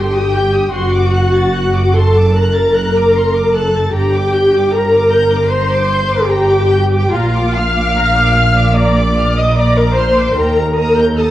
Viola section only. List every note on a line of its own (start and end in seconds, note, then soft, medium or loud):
0.00 0.75 G4 medium
0.74 1.94 F#4 medium
1.97 2.37 A4 medium
2.35 3.55 A#4 medium
3.55 3.95 A4 medium
3.95 4.72 G4 medium
4.73 5.52 A#4 medium
5.51 6.28 C5 medium
6.29 7.13 G4 medium
7.14 7.56 F4 medium
7.57 8.77 F5 medium
8.76 9.37 D5 medium
9.39 9.58 D#5 medium
9.57 9.78 D5 medium
9.78 9.98 A#4 medium
9.96 10.37 C5 medium
10.36 11.16 A#4 medium
11.16 11.31 A4 medium